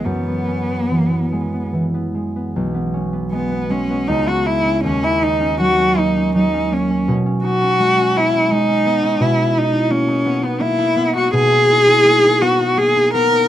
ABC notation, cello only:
X:1
M:3/4
L:1/16
Q:1/4=82
K:B
V:1 name="Cello"
B,8 z4 | z4 B,2 C2 D F E2 | C E D2 F2 D2 D2 C2 | z2 F4 E2 D4 |
E2 D2 C3 B, E3 F | G6 F2 G2 A2 |]